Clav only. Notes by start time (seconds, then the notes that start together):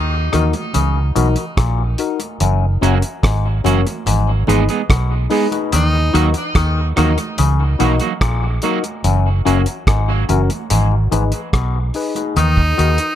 Already playing: D#3
0.33 D#3
0.74 C#3
1.16 B2
1.58 A#2
2.41 F#2
2.82 F#2
3.23 G#2
3.65 F#2
4.07 G#2
4.48 G#2
4.90 B2
5.73 D#3
6.14 D#3
6.56 D#3
6.98 D#3
7.39 C#3
7.80 B2
8.21 A#2
9.04 F#2
9.46 F#2
9.87 G#2
10.29 F#2
10.70 G#2
11.12 G#2
11.54 B2
12.37 D#3
12.78 D#3